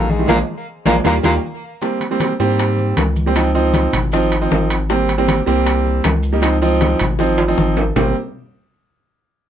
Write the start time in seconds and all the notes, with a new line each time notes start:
Already playing: A#1 A#2 A#3
0.10 G#2 G#3, high conga, maracas
0.19 D#3 G3 A3
0.27 A#1 A#2 F3 G#3 A#3, low bongo, high conga, high timbale, maracas
0.85 A#1 A#2 F3 G#3 A#3, low bongo, high conga, high timbale, maracas
1.04 D#2 A#2 D#3 G3 A#3, low bongo, high conga, high timbale, maracas
1.23 D#2 A#2 D#3 G3 A#3, low bongo, high conga, high timbale, maracas
1.82 G3 A#3 C4, high bongo, high conga, maracas
2.00 high bongo, high conga, high timbale, maracas
2.11 G3 A#3 C4
2.20 high bongo, high conga, high timbale, low timbale, maracas
2.40 G#2 G3 A#3 C4, high bongo, maracas
2.58 high bongo, high conga, high timbale, maracas
2.78 high bongo, high conga, maracas
2.97 C#2, high bongo, low bongo, high conga, high timbale, low timbale, maracas
3.16 high conga, maracas
3.26 G3 A#3 C4
3.35 F3 C4 D#4, high bongo, high conga, high timbale, maracas
3.54 F3 C4 D#4, high bongo, high conga, maracas
3.74 high bongo, high conga, high timbale, low timbale, maracas
3.93 G#1, high conga, low conga, high timbale, maracas
4.12 F3 C4 D#4, high bongo, high conga, maracas
4.31 high bongo, high conga, high timbale, maracas
4.41 F3 C4 D#4
4.51 G#1, high bongo, low bongo, high conga, low timbale, maracas
4.70 high bongo, high timbale, maracas
4.89 G3 A#3 C4, high bongo, high conga, maracas
5.08 high bongo, high conga, high timbale, maracas
5.18 G3 A#3 C4
5.28 high bongo, high conga, high timbale, low timbale, maracas
5.46 C2 G3 A#3 C4, high bongo, maracas
5.66 high bongo, high conga, high timbale, maracas
5.85 high bongo, high conga, maracas
6.04 C#2, high bongo, low bongo, high conga, high timbale, low timbale, maracas
6.23 maracas
6.33 G3 A#3 D#4
6.42 F3 C4 D#4, high bongo, high conga, high timbale, maracas
6.61 F3 C4 D#4, high bongo, high conga, maracas
6.81 high bongo, high conga, high timbale, low timbale, maracas
6.99 G#1, high conga, low conga, high timbale, maracas
7.19 F3 C4 D#4, high bongo, high conga, maracas
7.38 high conga, high timbale, maracas
7.48 F3 C4 D#4
7.58 G#1, low bongo, high conga, maracas
7.77 low bongo, low timbale, maracas
7.96 G#1 G3 A#3 C4, low bongo, low conga, low timbale, maracas